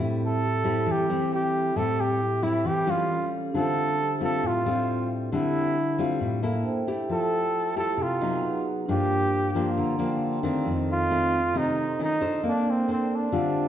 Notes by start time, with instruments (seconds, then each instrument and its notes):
Already playing: nylon-string guitar A2 G3 C4, vibraphone C4 G4
0.00 nylon-string guitar E4, vibraphone A4 E5
0.26 flugelhorn A4
0.64 nylon-string guitar G3 C4 E4
0.86 nylon-string guitar E3
0.91 flugelhorn G4
1.09 nylon-string guitar G3 C4 E4
1.34 flugelhorn G4
1.76 nylon-string guitar A2 G3 C4 E4, flugelhorn A4
2.00 flugelhorn G4
2.42 nylon-string guitar G3 C4 E4, flugelhorn E4
2.65 nylon-string guitar E3, flugelhorn G4
2.87 nylon-string guitar G3 C#4 F4, flugelhorn F4
3.09 vibraphone C#4 G4 A4 F5
3.52 nylon-string guitar D3 G3 C4 F4, vibraphone D4 G4 A4
3.56 flugelhorn A4, vibraphone C5 E5
4.20 nylon-string guitar G3 C4 F4
4.25 flugelhorn A4
4.43 nylon-string guitar A2
4.47 flugelhorn F4
4.66 nylon-string guitar G3 C4 F4
5.32 nylon-string guitar D3 G3 C4, flugelhorn E4
5.98 nylon-string guitar G3 C4 F4
6.21 nylon-string guitar A2
6.42 nylon-string guitar A#3 E4 A4, vibraphone A5
6.63 vibraphone D4 A4 C5 E5 G5
6.87 nylon-string guitar A3 E4 G4
7.09 nylon-string guitar F3, vibraphone A4 E5, flugelhorn A4
7.13 vibraphone G5
7.76 nylon-string guitar A3 E4 G4, flugelhorn A4
7.97 nylon-string guitar C3
8.02 flugelhorn F4
8.21 nylon-string guitar F#3 B3 D#4
8.43 vibraphone D#4 G#4 B4 F#5
8.86 nylon-string guitar G2 F3 A#3 D4, vibraphone D4 G4 A#4
8.91 flugelhorn G4, vibraphone F5
9.55 nylon-string guitar F3 A#3 D4, vibraphone C6
9.77 nylon-string guitar D3, vibraphone A#5
9.99 nylon-string guitar F3 A#3 D4, vibraphone G5
10.22 vibraphone F5
10.43 nylon-string guitar D#3 A3 C4, vibraphone D5
10.64 nylon-string guitar F2, vibraphone C4 F4
10.69 vibraphone A4 D#5
10.92 flugelhorn F4
11.11 nylon-string guitar D#3 A3 C4
11.54 nylon-string guitar C3 D#3 A3 C4, flugelhorn D#4
11.99 nylon-string guitar D#3 A3 C#4, vibraphone F4 A4 D#5
12.04 flugelhorn D#4
12.21 nylon-string guitar D4 A4 C5
12.42 nylon-string guitar A#3, vibraphone C4 A4
12.48 flugelhorn D4, vibraphone D5
12.70 flugelhorn C4
12.88 nylon-string guitar D4 A4 C5
12.92 flugelhorn C4
13.15 flugelhorn D4
13.31 nylon-string guitar D3 G3 C4 F4, vibraphone D4 F4 G4
13.36 vibraphone C5 E5